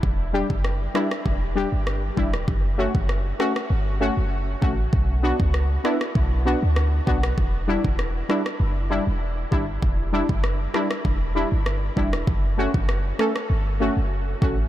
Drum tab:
SD |----r-rr----r--r|----r-rr--------|----r-rr----r--r|----r-rr--------|
BD |o--o----o-----o-|o--o----------o-|o--o----o-----o-|o--o----------o-|

SD |----r-rr----r--r|----r-rr--------|
BD |o--o----o-----o-|o--o----------o-|